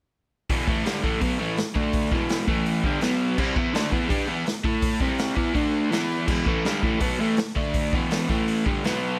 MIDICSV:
0, 0, Header, 1, 4, 480
1, 0, Start_track
1, 0, Key_signature, 1, "minor"
1, 0, Tempo, 363196
1, 641, Time_signature, 4, 2, 24, 8
1, 12148, End_track
2, 0, Start_track
2, 0, Title_t, "Overdriven electric guitar"
2, 0, Program_c, 0, 29
2, 658, Note_on_c, 0, 40, 104
2, 663, Note_on_c, 0, 47, 120
2, 677, Note_on_c, 0, 52, 114
2, 881, Note_off_c, 0, 40, 0
2, 883, Note_off_c, 0, 47, 0
2, 886, Note_off_c, 0, 52, 0
2, 891, Note_on_c, 0, 45, 80
2, 902, Note_on_c, 0, 52, 88
2, 905, Note_on_c, 0, 57, 101
2, 1116, Note_off_c, 0, 45, 0
2, 1119, Note_on_c, 0, 43, 105
2, 1122, Note_off_c, 0, 52, 0
2, 1123, Note_off_c, 0, 57, 0
2, 1125, Note_on_c, 0, 50, 93
2, 1135, Note_on_c, 0, 55, 89
2, 1349, Note_off_c, 0, 43, 0
2, 1352, Note_off_c, 0, 50, 0
2, 1357, Note_off_c, 0, 55, 0
2, 1361, Note_on_c, 0, 45, 93
2, 1365, Note_on_c, 0, 52, 100
2, 1381, Note_on_c, 0, 57, 97
2, 1590, Note_off_c, 0, 45, 0
2, 1592, Note_off_c, 0, 52, 0
2, 1595, Note_on_c, 0, 47, 95
2, 1600, Note_off_c, 0, 57, 0
2, 1603, Note_on_c, 0, 54, 103
2, 1615, Note_on_c, 0, 59, 111
2, 1826, Note_off_c, 0, 47, 0
2, 1830, Note_off_c, 0, 54, 0
2, 1833, Note_on_c, 0, 45, 91
2, 1836, Note_off_c, 0, 59, 0
2, 1843, Note_on_c, 0, 52, 108
2, 1854, Note_on_c, 0, 57, 87
2, 2064, Note_off_c, 0, 45, 0
2, 2069, Note_off_c, 0, 52, 0
2, 2074, Note_off_c, 0, 57, 0
2, 2311, Note_on_c, 0, 50, 91
2, 2321, Note_on_c, 0, 57, 93
2, 2330, Note_on_c, 0, 62, 98
2, 2780, Note_off_c, 0, 50, 0
2, 2785, Note_off_c, 0, 57, 0
2, 2789, Note_off_c, 0, 62, 0
2, 2795, Note_on_c, 0, 40, 86
2, 2804, Note_on_c, 0, 47, 95
2, 2821, Note_on_c, 0, 52, 90
2, 3260, Note_off_c, 0, 52, 0
2, 3261, Note_off_c, 0, 40, 0
2, 3261, Note_off_c, 0, 47, 0
2, 3266, Note_on_c, 0, 45, 109
2, 3275, Note_on_c, 0, 52, 109
2, 3288, Note_on_c, 0, 57, 104
2, 3735, Note_off_c, 0, 45, 0
2, 3740, Note_off_c, 0, 52, 0
2, 3746, Note_off_c, 0, 57, 0
2, 3762, Note_on_c, 0, 43, 93
2, 3767, Note_on_c, 0, 50, 86
2, 3778, Note_on_c, 0, 55, 99
2, 3980, Note_off_c, 0, 50, 0
2, 3983, Note_off_c, 0, 43, 0
2, 3985, Note_on_c, 0, 47, 89
2, 3991, Note_off_c, 0, 55, 0
2, 3997, Note_on_c, 0, 54, 106
2, 4006, Note_on_c, 0, 59, 109
2, 4453, Note_off_c, 0, 47, 0
2, 4459, Note_off_c, 0, 54, 0
2, 4464, Note_off_c, 0, 59, 0
2, 4472, Note_on_c, 0, 48, 93
2, 4483, Note_on_c, 0, 55, 110
2, 4494, Note_on_c, 0, 60, 112
2, 4696, Note_off_c, 0, 48, 0
2, 4702, Note_off_c, 0, 55, 0
2, 4708, Note_off_c, 0, 60, 0
2, 4713, Note_on_c, 0, 52, 77
2, 4726, Note_on_c, 0, 59, 88
2, 4736, Note_on_c, 0, 64, 99
2, 4936, Note_off_c, 0, 52, 0
2, 4941, Note_on_c, 0, 50, 105
2, 4943, Note_off_c, 0, 59, 0
2, 4948, Note_off_c, 0, 64, 0
2, 4955, Note_on_c, 0, 57, 91
2, 4961, Note_on_c, 0, 62, 114
2, 5171, Note_off_c, 0, 50, 0
2, 5177, Note_off_c, 0, 57, 0
2, 5180, Note_on_c, 0, 52, 88
2, 5181, Note_off_c, 0, 62, 0
2, 5189, Note_on_c, 0, 59, 97
2, 5200, Note_on_c, 0, 64, 106
2, 5402, Note_off_c, 0, 59, 0
2, 5407, Note_on_c, 0, 55, 101
2, 5410, Note_off_c, 0, 52, 0
2, 5414, Note_off_c, 0, 64, 0
2, 5419, Note_on_c, 0, 62, 110
2, 5426, Note_on_c, 0, 67, 99
2, 5643, Note_off_c, 0, 55, 0
2, 5648, Note_on_c, 0, 52, 85
2, 5649, Note_off_c, 0, 62, 0
2, 5652, Note_off_c, 0, 67, 0
2, 5656, Note_on_c, 0, 59, 103
2, 5668, Note_on_c, 0, 64, 111
2, 5884, Note_off_c, 0, 52, 0
2, 5887, Note_off_c, 0, 59, 0
2, 5893, Note_off_c, 0, 64, 0
2, 6132, Note_on_c, 0, 57, 80
2, 6144, Note_on_c, 0, 64, 97
2, 6151, Note_on_c, 0, 69, 91
2, 6605, Note_off_c, 0, 57, 0
2, 6611, Note_off_c, 0, 64, 0
2, 6615, Note_off_c, 0, 69, 0
2, 6615, Note_on_c, 0, 48, 88
2, 6628, Note_on_c, 0, 55, 88
2, 6635, Note_on_c, 0, 60, 97
2, 7075, Note_off_c, 0, 48, 0
2, 7081, Note_on_c, 0, 52, 88
2, 7091, Note_off_c, 0, 55, 0
2, 7095, Note_off_c, 0, 60, 0
2, 7096, Note_on_c, 0, 59, 91
2, 7100, Note_on_c, 0, 64, 108
2, 7320, Note_off_c, 0, 52, 0
2, 7325, Note_off_c, 0, 59, 0
2, 7325, Note_on_c, 0, 50, 88
2, 7330, Note_off_c, 0, 64, 0
2, 7331, Note_on_c, 0, 57, 100
2, 7344, Note_on_c, 0, 62, 109
2, 7802, Note_off_c, 0, 50, 0
2, 7806, Note_off_c, 0, 57, 0
2, 7807, Note_on_c, 0, 52, 91
2, 7812, Note_off_c, 0, 62, 0
2, 7819, Note_on_c, 0, 59, 92
2, 7827, Note_on_c, 0, 64, 107
2, 8285, Note_off_c, 0, 52, 0
2, 8286, Note_on_c, 0, 40, 88
2, 8291, Note_off_c, 0, 59, 0
2, 8294, Note_on_c, 0, 47, 112
2, 8295, Note_off_c, 0, 64, 0
2, 8307, Note_on_c, 0, 52, 104
2, 8524, Note_off_c, 0, 40, 0
2, 8529, Note_off_c, 0, 47, 0
2, 8535, Note_off_c, 0, 52, 0
2, 8538, Note_on_c, 0, 45, 85
2, 8554, Note_on_c, 0, 52, 91
2, 8559, Note_on_c, 0, 57, 94
2, 8771, Note_off_c, 0, 45, 0
2, 8780, Note_off_c, 0, 52, 0
2, 8782, Note_off_c, 0, 57, 0
2, 8798, Note_on_c, 0, 43, 97
2, 8803, Note_on_c, 0, 50, 100
2, 8813, Note_on_c, 0, 55, 104
2, 9016, Note_off_c, 0, 50, 0
2, 9021, Note_on_c, 0, 45, 88
2, 9022, Note_off_c, 0, 43, 0
2, 9030, Note_off_c, 0, 55, 0
2, 9037, Note_on_c, 0, 52, 104
2, 9038, Note_on_c, 0, 57, 96
2, 9251, Note_off_c, 0, 45, 0
2, 9256, Note_on_c, 0, 47, 94
2, 9262, Note_off_c, 0, 52, 0
2, 9263, Note_off_c, 0, 57, 0
2, 9272, Note_on_c, 0, 54, 99
2, 9278, Note_on_c, 0, 59, 114
2, 9492, Note_off_c, 0, 47, 0
2, 9500, Note_off_c, 0, 54, 0
2, 9501, Note_on_c, 0, 45, 93
2, 9504, Note_off_c, 0, 59, 0
2, 9522, Note_on_c, 0, 52, 91
2, 9530, Note_on_c, 0, 57, 110
2, 9736, Note_off_c, 0, 45, 0
2, 9746, Note_off_c, 0, 52, 0
2, 9751, Note_off_c, 0, 57, 0
2, 9983, Note_on_c, 0, 50, 91
2, 9996, Note_on_c, 0, 57, 95
2, 10005, Note_on_c, 0, 62, 103
2, 10461, Note_off_c, 0, 50, 0
2, 10467, Note_off_c, 0, 57, 0
2, 10472, Note_off_c, 0, 62, 0
2, 10484, Note_on_c, 0, 40, 81
2, 10497, Note_on_c, 0, 47, 93
2, 10500, Note_on_c, 0, 52, 95
2, 10951, Note_off_c, 0, 47, 0
2, 10952, Note_off_c, 0, 52, 0
2, 10954, Note_off_c, 0, 40, 0
2, 10956, Note_on_c, 0, 45, 93
2, 10968, Note_on_c, 0, 52, 101
2, 10969, Note_on_c, 0, 57, 96
2, 11432, Note_off_c, 0, 45, 0
2, 11433, Note_on_c, 0, 43, 99
2, 11438, Note_off_c, 0, 52, 0
2, 11439, Note_off_c, 0, 57, 0
2, 11443, Note_on_c, 0, 50, 94
2, 11457, Note_on_c, 0, 55, 102
2, 11670, Note_off_c, 0, 43, 0
2, 11675, Note_off_c, 0, 50, 0
2, 11683, Note_off_c, 0, 55, 0
2, 11688, Note_on_c, 0, 47, 101
2, 11696, Note_on_c, 0, 54, 96
2, 11708, Note_on_c, 0, 59, 104
2, 12148, Note_off_c, 0, 47, 0
2, 12148, Note_off_c, 0, 54, 0
2, 12148, Note_off_c, 0, 59, 0
2, 12148, End_track
3, 0, Start_track
3, 0, Title_t, "Muted overdriven electric guitar strokes"
3, 2074, Note_on_c, 9, 29, 60
3, 2206, Note_off_c, 9, 29, 0
3, 5897, Note_on_c, 9, 29, 65
3, 6029, Note_off_c, 9, 29, 0
3, 9744, Note_on_c, 9, 29, 62
3, 9876, Note_off_c, 9, 29, 0
3, 12148, End_track
4, 0, Start_track
4, 0, Title_t, "Drums"
4, 655, Note_on_c, 9, 46, 63
4, 657, Note_on_c, 9, 36, 107
4, 787, Note_off_c, 9, 46, 0
4, 789, Note_off_c, 9, 36, 0
4, 893, Note_on_c, 9, 36, 119
4, 1025, Note_off_c, 9, 36, 0
4, 1136, Note_on_c, 9, 46, 62
4, 1154, Note_on_c, 9, 38, 110
4, 1268, Note_off_c, 9, 46, 0
4, 1286, Note_off_c, 9, 38, 0
4, 1371, Note_on_c, 9, 36, 106
4, 1503, Note_off_c, 9, 36, 0
4, 1601, Note_on_c, 9, 46, 57
4, 1607, Note_on_c, 9, 36, 103
4, 1733, Note_off_c, 9, 46, 0
4, 1740, Note_off_c, 9, 36, 0
4, 2077, Note_on_c, 9, 46, 56
4, 2095, Note_on_c, 9, 38, 106
4, 2209, Note_off_c, 9, 46, 0
4, 2228, Note_off_c, 9, 38, 0
4, 2321, Note_on_c, 9, 36, 110
4, 2453, Note_off_c, 9, 36, 0
4, 2552, Note_on_c, 9, 46, 66
4, 2559, Note_on_c, 9, 36, 108
4, 2684, Note_off_c, 9, 46, 0
4, 2691, Note_off_c, 9, 36, 0
4, 2797, Note_on_c, 9, 36, 116
4, 2929, Note_off_c, 9, 36, 0
4, 3029, Note_on_c, 9, 46, 60
4, 3047, Note_on_c, 9, 38, 107
4, 3161, Note_off_c, 9, 46, 0
4, 3179, Note_off_c, 9, 38, 0
4, 3275, Note_on_c, 9, 36, 113
4, 3407, Note_off_c, 9, 36, 0
4, 3513, Note_on_c, 9, 46, 52
4, 3645, Note_off_c, 9, 46, 0
4, 3750, Note_on_c, 9, 36, 101
4, 3882, Note_off_c, 9, 36, 0
4, 3979, Note_on_c, 9, 46, 57
4, 3998, Note_on_c, 9, 38, 100
4, 4111, Note_off_c, 9, 46, 0
4, 4130, Note_off_c, 9, 38, 0
4, 4467, Note_on_c, 9, 49, 103
4, 4470, Note_on_c, 9, 36, 101
4, 4599, Note_off_c, 9, 49, 0
4, 4602, Note_off_c, 9, 36, 0
4, 4707, Note_on_c, 9, 36, 114
4, 4839, Note_off_c, 9, 36, 0
4, 4950, Note_on_c, 9, 46, 61
4, 4968, Note_on_c, 9, 38, 121
4, 5082, Note_off_c, 9, 46, 0
4, 5100, Note_off_c, 9, 38, 0
4, 5184, Note_on_c, 9, 36, 108
4, 5316, Note_off_c, 9, 36, 0
4, 5420, Note_on_c, 9, 36, 113
4, 5421, Note_on_c, 9, 46, 57
4, 5553, Note_off_c, 9, 36, 0
4, 5553, Note_off_c, 9, 46, 0
4, 5899, Note_on_c, 9, 46, 55
4, 5918, Note_on_c, 9, 38, 93
4, 6032, Note_off_c, 9, 46, 0
4, 6050, Note_off_c, 9, 38, 0
4, 6136, Note_on_c, 9, 36, 113
4, 6268, Note_off_c, 9, 36, 0
4, 6373, Note_on_c, 9, 46, 68
4, 6376, Note_on_c, 9, 36, 122
4, 6505, Note_off_c, 9, 46, 0
4, 6508, Note_off_c, 9, 36, 0
4, 6614, Note_on_c, 9, 36, 110
4, 6746, Note_off_c, 9, 36, 0
4, 6850, Note_on_c, 9, 46, 54
4, 6868, Note_on_c, 9, 38, 117
4, 6982, Note_off_c, 9, 46, 0
4, 7000, Note_off_c, 9, 38, 0
4, 7093, Note_on_c, 9, 36, 111
4, 7225, Note_off_c, 9, 36, 0
4, 7333, Note_on_c, 9, 36, 99
4, 7337, Note_on_c, 9, 46, 49
4, 7465, Note_off_c, 9, 36, 0
4, 7469, Note_off_c, 9, 46, 0
4, 7824, Note_on_c, 9, 46, 56
4, 7842, Note_on_c, 9, 38, 107
4, 7956, Note_off_c, 9, 46, 0
4, 7974, Note_off_c, 9, 38, 0
4, 8296, Note_on_c, 9, 49, 108
4, 8298, Note_on_c, 9, 36, 118
4, 8428, Note_off_c, 9, 49, 0
4, 8431, Note_off_c, 9, 36, 0
4, 8542, Note_on_c, 9, 36, 109
4, 8674, Note_off_c, 9, 36, 0
4, 8787, Note_on_c, 9, 46, 56
4, 8806, Note_on_c, 9, 38, 107
4, 8920, Note_off_c, 9, 46, 0
4, 8938, Note_off_c, 9, 38, 0
4, 9025, Note_on_c, 9, 36, 108
4, 9158, Note_off_c, 9, 36, 0
4, 9257, Note_on_c, 9, 46, 63
4, 9264, Note_on_c, 9, 36, 107
4, 9389, Note_off_c, 9, 46, 0
4, 9396, Note_off_c, 9, 36, 0
4, 9738, Note_on_c, 9, 46, 56
4, 9756, Note_on_c, 9, 38, 108
4, 9870, Note_off_c, 9, 46, 0
4, 9888, Note_off_c, 9, 38, 0
4, 9993, Note_on_c, 9, 36, 107
4, 10125, Note_off_c, 9, 36, 0
4, 10228, Note_on_c, 9, 46, 68
4, 10233, Note_on_c, 9, 36, 110
4, 10360, Note_off_c, 9, 46, 0
4, 10365, Note_off_c, 9, 36, 0
4, 10479, Note_on_c, 9, 36, 126
4, 10612, Note_off_c, 9, 36, 0
4, 10714, Note_on_c, 9, 46, 64
4, 10733, Note_on_c, 9, 38, 124
4, 10847, Note_off_c, 9, 46, 0
4, 10865, Note_off_c, 9, 38, 0
4, 10962, Note_on_c, 9, 36, 102
4, 11094, Note_off_c, 9, 36, 0
4, 11205, Note_on_c, 9, 46, 52
4, 11337, Note_off_c, 9, 46, 0
4, 11449, Note_on_c, 9, 36, 106
4, 11581, Note_off_c, 9, 36, 0
4, 11686, Note_on_c, 9, 46, 48
4, 11704, Note_on_c, 9, 38, 104
4, 11818, Note_off_c, 9, 46, 0
4, 11837, Note_off_c, 9, 38, 0
4, 12148, End_track
0, 0, End_of_file